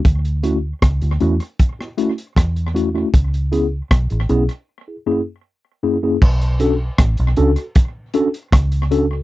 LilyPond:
<<
  \new Staff \with { instrumentName = "Tine electric piano" } { \time 4/4 \key b \dorian \tempo 4 = 78 r8 <a cis' e' fis'>16 r8 <e' fis'>16 <a cis' e' fis'>16 r8 <e' fis'>16 <a cis' e' fis'>16 r8. <a cis' e' fis'>16 <a cis' e' fis'>16 | r8 <b cis' e' gis'>16 r8 <e' gis'>16 <b cis' e' gis'>16 r8 <e' gis'>16 <fis, ais cis' e' gis'>16 r8. <fis, ais cis' e' gis'>16 <fis, ais cis' e' gis'>16 | r8 <cis' d' fis' a'>16 r8. <cis' d' fis' a'>16 r8. <cis' d' fis' a'>16 r8. <cis' d' fis' a'>16 r16 | }
  \new Staff \with { instrumentName = "Fingered electric bass" } { \clef bass \time 4/4 \key b \dorian d,4 cis,16 d,16 e,16 r4 r16 e,4 | cis,4 b,,16 a,,16 b,,16 r2 r16 | b,,4 a,,16 b,,16 cis,16 r4 r16 cis,4 | }
  \new DrumStaff \with { instrumentName = "Drums" } \drummode { \time 4/4 <hh bd>16 hh16 hh8 <hh bd ss>16 hh16 hh16 hh16 <hh bd>16 ss16 hh16 hh16 <hh bd ss>16 hh16 hh8 | <hh bd>16 hh16 hh8 <hh bd ss>16 hh16 hh16 hh16 r4 r4 | <cymc bd>16 hh16 hh8 <hh bd ss>16 hh16 hh16 hh16 <hh bd>8 hh16 hh16 <hh bd ss>16 hh16 hh8 | }
>>